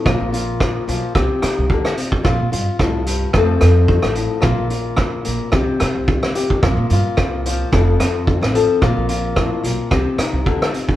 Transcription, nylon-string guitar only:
0.00 1.42 C4 medium
0.05 1.15 A#2 medium
0.05 0.31 F4 medium
0.33 0.87 F4 medium
0.88 1.12 F3 medium
0.88 1.15 F4 medium
1.15 1.70 C3 medium
1.15 2.22 G4 medium
1.42 2.22 D#4 medium
1.70 1.97 D3 medium
1.97 2.23 C3 medium
2.23 2.51 F4 medium
2.23 muted nylon-string guitar stroke medium
2.52 3.34 F4 medium
2.80 3.06 A2 medium
3.06 3.34 G2 medium
3.34 3.89 F2 medium
3.34 4.41 F3 medium
3.34 4.42 A3 medium
3.34 3.63 C4 medium
3.34 4.41 A4 medium
3.63 5.81 C4 medium
3.89 4.15 G2 medium
4.15 4.43 A2 medium
4.41 5.24 A#2 medium
4.41 4.69 F4 medium
4.71 5.53 F4 medium
4.98 muted nylon-string guitar stroke medium
5.25 5.52 A#2 medium
5.53 6.35 C3 medium
5.53 6.34 G4 medium
5.81 muted nylon-string guitar stroke medium
6.35 6.63 D#3 medium
6.35 6.60 G4 medium
6.63 7.73 A#2 medium
6.63 6.91 F4 medium
6.93 7.46 F4 medium
7.46 7.70 F3 medium
7.46 7.73 F4 medium
7.73 8.82 F2 medium
7.73 8.54 A4 medium
8.00 10.20 C4 medium
8.53 8.79 F3 medium
8.53 8.79 A4 medium
8.82 9.64 A#2 medium
8.82 9.08 F4 medium
9.09 9.92 F4 medium
9.37 9.65 A2 medium
9.66 9.92 A#2 medium
9.92 10.45 C3 medium
9.92 10.96 G4 medium
10.20 10.96 D#4 medium
10.46 10.72 D3 medium
10.72 10.96 C3 medium

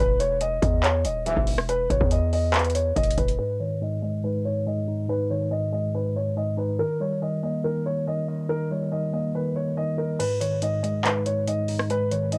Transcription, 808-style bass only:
0.00 0.60 E1 loud
0.62 1.06 E2 loud
1.05 1.35 D#1 loud
1.37 1.88 E1 loud
1.90 2.00 E1 loud
2.01 2.93 E2 loud
2.96 3.17 E1 loud
3.18 3.38 E1 loud

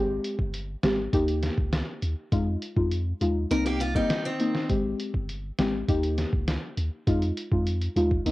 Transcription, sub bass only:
0.00 0.19 G#1 loud
0.39 0.76 G1 medium
0.84 1.08 G#1 loud
1.13 1.50 D#2 loud
1.58 1.82 C#2 medium
2.02 2.15 D#2 medium
2.32 2.57 F2 loud
2.76 3.13 F2 medium
3.21 3.46 D#2 loud
3.51 4.00 C2 loud
4.70 4.94 G#1 loud
5.14 5.51 G1 medium
5.59 5.83 G#1 loud
5.88 6.25 D#2 loud
6.33 6.57 C#2 medium
6.77 6.90 D#2 medium
7.07 7.32 F2 loud
7.52 7.89 F2 medium
7.96 8.21 D#2 loud
8.26 8.32 C2 loud

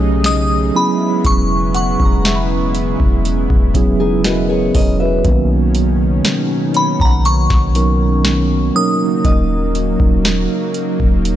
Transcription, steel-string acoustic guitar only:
4.00 4.24 D#4 medium
4.00 4.23 G#4 medium
4.24 4.49 F#4 medium
4.24 4.48 B4 medium
4.50 4.74 G#4 medium
4.50 4.73 C#5 medium
4.75 4.99 A#4 medium
4.75 4.99 D#5 medium
5.00 5.47 B4 medium
5.00 5.47 E5 medium

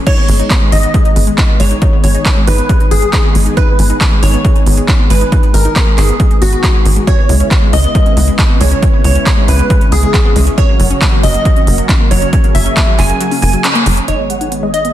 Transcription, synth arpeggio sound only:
0.07 0.13 D#4 loud
0.18 0.24 B3 medium
0.29 0.35 G#3 medium
0.40 0.50 D#4 medium
0.50 0.55 B3 medium
0.61 0.72 G#3 loud
0.72 0.79 D#4 medium
0.83 0.94 B3 medium
0.94 1.01 G#3 loud
1.05 1.12 D#4 medium
1.16 1.20 B3 medium
1.27 1.37 G#3 medium
1.38 1.42 D#4 medium
1.49 1.59 B3 loud
1.60 1.67 G#3 loud
1.71 1.78 D#4 medium
1.82 1.89 D#4 loud
1.93 2.00 B3 medium
2.04 2.11 G#3 medium
2.15 2.25 D#4 medium
2.26 2.30 B3 medium
2.37 2.47 G#3 medium
2.48 2.54 D#4 medium
2.58 2.69 B3 medium
2.69 2.76 G#3 loud
2.80 2.87 D#4 medium
2.91 2.95 B3 medium
3.02 3.13 G#3 medium
3.13 3.17 D#4 medium
3.24 3.34 B3 loud
3.35 3.42 G#3 loud
3.46 3.53 D#4 medium
3.57 3.64 D#4 loud
3.68 3.75 B3 medium
3.79 3.86 G#3 medium
3.90 4.00 D#4 medium
4.01 4.05 B3 medium
4.12 4.22 G#3 loud
4.23 4.30 D#4 medium
4.34 4.44 B3 medium
4.45 4.51 G#3 loud
4.56 4.62 D#4 medium
4.67 4.71 B3 medium
4.77 4.88 G#3 medium
4.99 5.10 B3 loud
5.10 5.17 G#3 loud
5.21 5.28 D#4 medium
5.32 5.39 D#4 loud
5.43 5.50 B3 medium
5.54 5.61 G#3 medium
5.65 5.75 D#4 medium
5.76 5.80 B3 medium
5.87 5.97 G#3 loud
5.98 6.05 D#4 medium
6.09 6.19 B3 medium
6.20 6.27 G#3 loud
6.31 6.38 D#4 medium
6.42 6.48 B3 medium
6.53 6.59 B4 medium
6.64 6.74 G#3 loud
6.75 6.79 G#5 medium
6.86 6.92 G#4 medium
6.96 7.01 G#3 medium
7.07 7.14 C#4 loud
7.18 7.25 B3 medium
7.29 7.36 G#3 medium
7.40 7.50 C#4 medium
7.51 7.55 B3 medium
7.62 7.72 G#3 loud
7.73 7.80 C#4 medium
7.84 7.94 B3 medium
7.95 8.02 G#3 loud
8.06 8.13 C#4 medium
8.17 8.21 B3 medium
8.28 8.38 G#3 medium
8.50 8.60 B3 loud
8.61 8.67 G#3 loud
8.72 8.78 C#4 medium
8.82 8.89 C#4 medium
8.93 9.00 B3 medium
9.04 9.11 G#3 medium
9.15 9.26 C#4 medium
9.26 9.30 B3 medium
9.37 9.47 G#3 loud
9.48 9.55 C#4 medium
9.59 9.69 B3 medium
9.70 9.77 G#3 loud
9.81 9.88 C#4 medium
9.92 9.96 B3 medium
10.03 10.13 G#3 medium
10.14 10.18 C#4 medium
10.25 10.35 B3 loud
10.36 10.43 G#3 loud
10.47 10.54 C#4 medium
10.58 10.65 C#4 loud
10.69 10.76 A#3 medium
10.80 10.86 F#3 medium
10.91 11.01 C#4 medium
11.02 11.06 A#3 medium
11.12 11.23 F#3 loud
11.23 11.30 C#4 medium
11.34 11.45 A#3 medium
11.45 11.52 F#3 loud
11.56 11.63 C#4 medium
11.67 11.71 A#3 medium
11.78 11.88 F#3 medium
11.89 11.93 C#4 medium
12.00 12.10 A#3 loud
12.11 12.18 F#3 loud
12.22 12.29 C#4 medium
12.33 12.40 C#4 loud
12.44 12.51 A#3 medium
12.55 12.62 F#3 medium
12.66 12.76 C#4 medium
12.77 12.81 A#3 medium
12.88 12.98 F#3 loud
12.99 13.05 C#4 medium
13.10 13.20 A#3 medium
13.21 13.27 F#3 loud
13.32 13.38 C#4 medium
13.42 13.46 A#3 medium
13.53 13.64 F#3 medium
13.64 13.68 C#4 medium
13.75 13.85 A#3 loud
13.86 13.93 F#3 loud
13.97 14.04 C#4 medium
14.08 14.15 D#4 medium
14.19 14.26 B3 medium
14.30 14.37 G#3 medium
14.41 14.51 D#4 medium
14.52 14.56 B3 medium
14.63 14.73 G#3 loud
14.74 14.81 D#4 medium
14.85 14.93 B3 medium

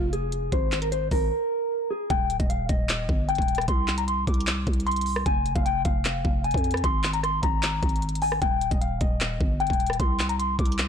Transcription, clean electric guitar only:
0.13 0.50 G#4 medium
0.52 0.80 C5 loud
0.82 0.91 A#4 medium
0.92 1.10 C5 medium
1.12 1.87 A#4 medium
1.91 2.09 G#4 medium
2.10 2.38 G5 loud
2.40 2.49 D#5 medium
2.50 2.68 F5 medium
2.69 3.25 D#5 medium
3.29 3.66 G5 medium
3.68 3.96 C6 loud
3.98 4.07 A#5 medium
4.08 4.26 C6 medium
4.27 4.83 D6 medium
4.87 5.24 C6 medium
5.26 5.54 G#5 loud
5.56 5.65 F5 medium
5.66 5.84 G5 medium
5.85 6.41 F5 medium
6.44 6.81 G#5 medium
6.84 7.12 C6 loud
7.13 7.23 A#5 medium
7.23 7.42 C6 medium
7.43 8.18 A#5 medium
8.22 8.40 G#5 medium
8.42 8.70 G5 loud
8.71 8.81 D#5 medium
8.81 8.99 F5 medium
9.01 9.57 D#5 medium
9.60 9.97 G5 medium
10.00 10.27 C6 loud
10.29 10.38 A#5 medium
10.39 10.57 C6 medium
10.59 10.88 D6 medium

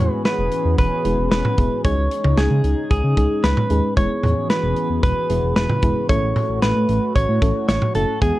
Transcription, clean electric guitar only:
0.00 0.22 C#5 loud
0.25 0.75 B4 loud
0.78 1.30 B4 medium
1.32 1.81 B4 loud
1.85 2.39 C#5 loud
2.38 2.90 G#4 medium
2.91 3.45 G#4 medium
3.44 3.93 B4 medium
3.97 4.50 C#5 loud
4.50 5.02 B4 medium
5.03 5.55 B4 medium
5.56 6.09 B4 loud
6.09 6.59 C#5 loud
6.62 7.15 B4 medium
7.16 7.67 C#5 loud
7.69 7.95 C#5 medium
7.95 8.21 A4 medium
8.22 8.39 G#4 medium

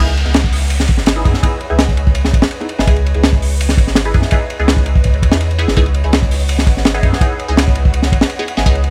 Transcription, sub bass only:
0.00 0.24 C#2 loud
0.26 0.90 C#2 medium
0.89 1.24 G#1 medium
1.25 1.33 F#2 medium
1.70 2.35 C#2 medium
2.33 2.42 G#1 loud
2.78 2.87 G#1 medium
2.87 3.13 C#2 loud
3.15 3.79 C#2 medium
3.77 4.12 G#1 medium
4.14 4.23 F#2 medium
4.59 5.24 C#2 medium
5.22 5.66 E2 medium
5.68 5.76 G#1 medium
5.77 6.03 C#2 loud
6.04 6.68 C#2 medium
6.67 7.02 G#1 medium
7.03 7.11 F#2 medium
7.49 8.14 C#2 medium
8.12 8.20 G#1 loud
8.57 8.65 G#1 medium
8.66 8.90 C#2 loud

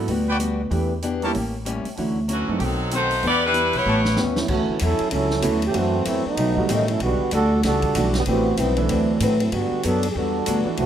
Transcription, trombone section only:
4.20 4.38 E3 medium
4.20 4.37 G3 medium
4.20 4.38 B3 medium
4.20 4.37 C#4 medium
4.39 4.50 G3 medium
4.39 4.50 B3 medium
4.39 4.49 C#4 medium
4.39 4.50 E4 medium
4.50 4.79 E3 medium
4.50 4.79 A3 medium
4.50 4.79 C#4 medium
4.50 4.79 F#4 loud
4.83 5.11 F#3 medium
4.83 5.11 C#4 medium
4.83 5.11 E4 medium
4.83 5.11 A4 loud
5.12 5.59 F#3 medium
5.12 5.59 C#4 medium
5.12 5.59 E4 medium
5.12 5.59 A4 loud
5.66 5.75 E3 medium
5.66 5.76 A3 medium
5.66 5.77 C#4 medium
5.66 5.77 G4 loud
5.76 6.07 E3 medium
5.76 6.06 A3 medium
5.76 6.05 C4 medium
5.76 6.08 F#4 loud
6.06 6.26 F#3 medium
6.06 6.26 A3 medium
6.06 6.26 C4 medium
6.06 6.26 E4 loud
6.27 6.67 F#3 medium
6.27 6.67 A3 medium
6.27 6.67 B3 medium
6.27 6.67 D#4 loud
6.70 6.89 D#3 medium
6.70 6.89 F#3 medium
6.70 6.88 A3 medium
6.70 6.88 C#4 medium
6.89 7.02 F#3 medium
6.89 7.01 A3 medium
6.89 7.01 C#4 medium
6.89 7.01 E4 medium
7.02 7.31 D3 medium
7.02 7.31 G3 medium
7.02 7.31 B3 medium
7.02 7.31 F#4 loud
7.33 7.62 G3 medium
7.33 7.62 D4 medium
7.33 7.62 F#4 loud
7.33 7.62 A4 loud
7.65 8.12 G3 medium
7.65 8.12 D4 medium
7.65 8.12 F#4 medium
7.65 8.12 A4 loud
8.16 8.21 D3 medium
8.16 8.22 F#3 medium
8.16 8.21 B3 medium
8.16 8.21 G4 medium
8.28 8.57 E3 medium
8.28 8.57 B3 medium
8.28 8.57 C4 medium
8.28 8.57 F#4 loud
8.59 8.78 G3 medium
8.59 8.78 B3 medium
8.59 8.77 C4 medium
8.59 8.78 E4 medium
8.78 9.20 F#3 medium
8.78 9.21 A3 medium
8.78 9.20 C4 medium
8.78 9.21 D4 medium
9.21 9.40 E3 medium
9.21 9.39 F#3 medium
9.21 9.39 A3 medium
9.21 9.39 C4 medium
9.40 9.53 F#3 medium
9.40 9.52 A3 medium
9.40 9.52 C4 medium
9.40 9.53 E4 medium
9.53 9.85 D3 medium
9.53 9.85 G3 medium
9.53 9.83 B3 medium
9.53 9.84 F#4 loud
9.84 10.10 F#3 medium
9.84 10.10 B3 medium
9.84 10.10 D4 medium
9.84 10.11 A4 loud
10.10 10.16 G#4 medium
10.15 10.66 G3 medium
10.15 10.66 D4 medium
10.15 10.66 F#4 medium
10.15 10.66 A4 loud
10.77 10.86 E3 medium
10.77 10.86 A3 medium
10.77 10.86 C4 medium
10.77 10.86 F#4 loud

